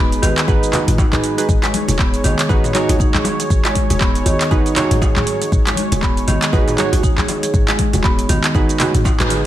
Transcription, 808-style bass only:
0.00 0.18 D#1 medium
0.23 0.33 G#1 medium
0.48 0.59 G#1 medium
0.88 1.05 G#1 medium
1.13 1.20 G#1 loud
1.49 1.59 G#1 loud
1.88 2.19 D#1 medium
2.24 2.35 G#1 medium
2.49 2.60 G#1 medium
2.89 3.06 G#1 loud
3.14 3.22 G#1 loud
3.50 3.61 G#1 loud
3.90 4.21 D#1 medium
4.26 4.36 G#1 medium
4.51 4.62 G#1 medium
4.91 5.08 G#1 loud
5.16 5.24 G#1 loud
5.52 5.63 G#1 loud
5.92 6.23 D#1 medium
6.28 6.38 G#1 medium
6.53 6.63 G#1 medium
6.93 7.10 G#1 medium
7.18 7.25 G#1 loud
7.54 7.64 G#1 loud
7.93 8.25 D#1 medium
8.29 8.40 G#1 medium
8.55 8.65 G#1 medium
8.94 9.11 G#1 medium
9.20 9.46 G#1 medium

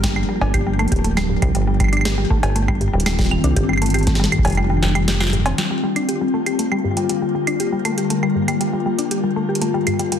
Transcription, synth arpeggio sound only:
0.03 0.10 G3 medium
0.16 0.20 G3 medium
0.29 0.39 G3 medium
0.41 0.48 D4 medium
0.54 0.61 G4 medium
0.67 0.73 G3 medium
0.79 0.86 A3 loud
0.92 1.02 G4 medium
1.04 1.15 A3 medium
1.17 1.21 G3 loud
1.30 1.34 G2 medium
1.42 1.49 G3 loud
1.55 1.62 G3 medium
1.67 1.72 G3 medium
1.80 1.90 G3 medium
1.93 1.99 D4 medium
2.05 2.12 G4 medium
2.18 2.25 G3 medium
2.30 2.37 A3 loud
2.43 2.53 G4 medium
2.56 2.66 A3 medium
2.68 2.72 G3 loud
2.81 2.85 G2 medium
2.93 3.00 G3 loud
3.06 3.13 G3 medium
3.19 3.23 G3 medium
3.31 3.42 G3 medium
3.44 3.51 D4 medium
3.56 3.63 G4 medium
3.69 3.76 G3 medium
3.82 3.89 A3 loud
3.94 4.05 G4 medium
4.07 4.17 A3 medium
4.20 4.24 G3 loud
4.32 4.36 G2 medium
4.45 4.52 G3 loud
4.57 4.64 G3 medium
4.70 4.74 G3 medium
4.82 4.93 G3 medium
4.95 5.02 G3 loud
5.08 5.12 G4 medium
5.20 5.27 G3 medium
5.33 5.43 G2 medium
5.46 5.56 C4 medium
5.58 5.65 G3 medium
5.71 5.75 G3 medium
5.83 5.94 G3 medium
5.96 6.03 D4 medium
6.09 6.15 G4 medium
6.21 6.28 G3 medium
6.34 6.41 A3 loud
6.46 6.57 G4 medium
6.59 6.69 A3 medium
6.72 6.76 G3 loud
6.84 6.88 G2 medium
6.97 7.04 G3 loud
7.09 7.16 G3 medium
7.22 7.26 G3 medium
7.35 7.45 G3 medium
7.47 7.54 D4 medium
7.60 7.67 G4 medium
7.72 7.79 G3 medium
7.85 7.92 A3 medium
7.98 8.08 G4 medium
8.10 8.21 A3 medium
8.23 8.27 G3 loud
8.35 8.40 G2 medium
8.48 8.55 G3 loud
8.61 8.68 G3 medium
8.73 8.77 G3 medium
8.86 8.96 G3 medium
8.98 9.05 D4 medium
9.11 9.18 G4 medium
9.24 9.31 G3 medium
9.36 9.43 A3 loud
9.49 9.59 G4 medium
9.61 9.72 A3 medium
9.74 9.78 G3 loud
9.87 9.91 G2 medium
9.99 10.06 G3 loud
10.12 10.19 G3 medium

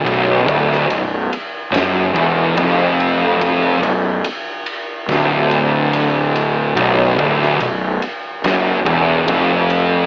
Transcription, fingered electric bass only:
0.06 0.45 B0 medium
0.48 0.87 D1 loud
0.89 1.28 B0 medium
1.72 2.12 F#1 loud
2.15 2.54 E1 loud
2.57 3.79 F1 medium
3.81 4.21 B0 medium
5.08 6.72 D1 medium
6.77 7.16 B0 medium
7.19 7.58 D1 medium
7.60 7.99 B0 medium
8.44 8.83 F#1 medium
8.86 9.25 E1 medium
9.29 10.06 F1 loud

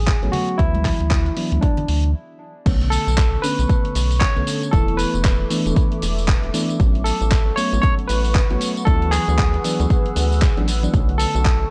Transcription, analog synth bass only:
0.00 0.14 A1 loud
0.23 0.29 A1 medium
0.59 0.91 D2 loud
1.00 1.30 D2 medium
1.52 1.59 D2 medium
1.88 2.14 D2 loud
2.66 2.98 B1 loud
3.07 3.37 B1 medium
3.59 3.66 B1 medium
3.95 4.27 B1 loud
4.37 4.43 B1 medium
4.73 5.05 E1 medium
5.14 5.44 E1 medium
5.66 5.72 E1 loud
6.02 6.34 E1 loud
6.43 6.50 E1 medium
6.80 7.12 A1 medium
7.21 7.51 A1 medium
7.73 7.79 A1 medium
8.09 8.41 A1 loud
8.50 8.57 A1 medium
8.87 9.19 D2 loud
9.28 9.58 D2 medium
9.80 9.86 D2 medium
10.16 10.48 D2 loud
10.57 10.87 A1 medium
10.94 11.26 B1 loud
11.35 11.65 B1 medium

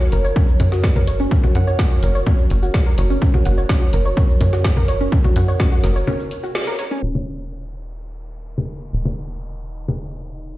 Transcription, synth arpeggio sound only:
0.01 0.12 F#4 medium
0.12 0.21 A#4 medium
0.24 0.29 C#5 medium
0.36 0.45 C#4 loud
0.72 0.80 F#4 medium
0.96 1.04 A#4 medium
1.07 1.16 C#5 medium
1.20 1.28 C#4 medium
1.31 1.37 C#4 medium
1.44 1.49 F#4 medium
1.55 1.67 F#5 medium
1.67 1.72 C#5 medium
1.79 1.88 C#4 medium
1.91 2.02 F#4 medium
2.03 2.12 A#4 medium
2.15 2.20 C#5 medium
2.27 2.35 C#4 medium
2.63 2.71 F#4 medium
2.86 2.95 A#4 medium
2.98 3.07 C#5 medium
3.10 3.18 C#4 loud
3.22 3.27 C#4 medium
3.34 3.39 F#4 medium
3.45 3.57 F#5 medium
3.58 3.63 C#5 medium
3.69 3.78 C#4 medium
3.82 3.93 F#4 medium
3.93 4.02 A#4 medium
4.05 4.10 C#5 medium
4.17 4.26 C#4 loud
4.53 4.61 F#4 medium
4.77 4.85 A#4 medium
4.88 4.97 C#5 medium
5.01 5.09 C#4 medium
5.12 5.17 C#4 medium
5.24 5.29 F#4 medium
5.36 5.48 F#5 medium
5.48 5.53 C#5 medium
5.60 5.69 C#4 medium
5.72 5.83 F#4 medium
5.84 5.92 A#4 medium
5.96 6.01 C#5 medium
6.07 6.16 C#4 loud
6.43 6.52 F#4 medium
6.67 6.76 A#4 medium
6.79 6.88 C#5 medium
6.91 6.99 C#4 loud

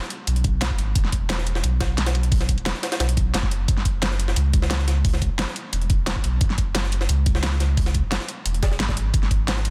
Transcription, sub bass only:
0.27 0.69 B1 loud
0.78 0.94 G#1 loud
0.95 1.62 E1 loud
1.64 2.56 B1 loud
2.58 2.73 E1 medium
3.00 3.34 B1 loud
3.34 3.67 F#1 medium
3.68 4.35 F#1 loud
4.37 5.29 C#2 loud
5.30 5.46 F#1 medium
5.73 6.14 E1 loud
6.24 6.40 B1 loud
6.41 7.08 F#1 loud
7.09 8.02 C#2 loud
8.03 8.19 F#1 medium
8.46 8.79 E1 loud
8.80 9.12 G#1 loud
9.14 9.70 G#1 loud

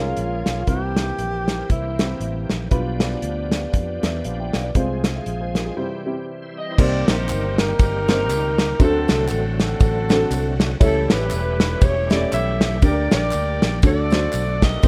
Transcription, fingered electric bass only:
0.00 0.14 C2 medium
0.17 0.42 A#1 medium
0.47 0.65 B1 medium
0.68 1.11 C2 medium
1.18 1.62 A#1 medium
1.70 2.13 C2 medium
2.20 2.45 A1 medium
2.51 2.68 A#1 medium
2.72 3.15 B1 medium
3.22 3.65 D2 medium
3.74 3.99 F2 medium
4.03 4.21 E2 medium
4.25 4.50 A#1 medium
4.55 4.72 B1 medium
4.75 5.18 C2 medium
5.26 5.69 A#1 medium
6.79 7.03 C2 loud
7.08 7.31 A#1 loud
7.29 7.72 G1 medium
7.80 8.30 G1 medium
8.30 8.72 C#2 loud
8.80 9.05 D2 loud
9.09 9.27 C2 loud
9.31 9.73 A1 medium
9.81 10.23 A1 loud
10.30 10.73 C2 loud
10.81 11.06 C#2 loud
11.12 11.29 A1 loud
11.32 11.74 E1 medium
11.82 12.25 E1 medium
12.33 12.82 B1 loud
12.82 13.07 D2 loud
13.13 13.30 A#1 loud
13.34 13.58 D2 loud
13.63 13.80 A#1 loud
13.84 14.26 D2 loud
14.34 14.76 B1 loud
14.84 14.88 C2 medium

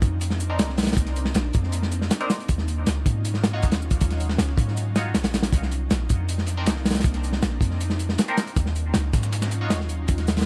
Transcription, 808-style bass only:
0.02 0.61 F2 medium
0.59 0.96 C2 loud
0.97 1.33 C2 loud
1.35 1.52 A#1 medium
1.55 2.10 F2 medium
2.49 2.86 D#2 loud
2.87 3.04 C#2 loud
3.06 3.65 G#2 medium
3.63 4.00 D#2 loud
4.01 4.38 D#2 loud
4.39 4.56 C#2 loud
4.57 5.16 G#2 medium
5.15 5.51 A#1 loud
5.53 5.89 C2 loud
5.91 6.08 A#1 loud
6.10 6.68 F2 medium
6.67 7.03 C2 loud
7.05 7.41 C2 loud
7.43 7.60 A#1 loud
7.61 8.17 F2 medium
8.56 8.93 D#2 loud
8.95 9.12 C#2 loud
9.13 9.72 G#2 medium
9.71 10.07 D#2 loud
10.09 10.45 D#2 loud

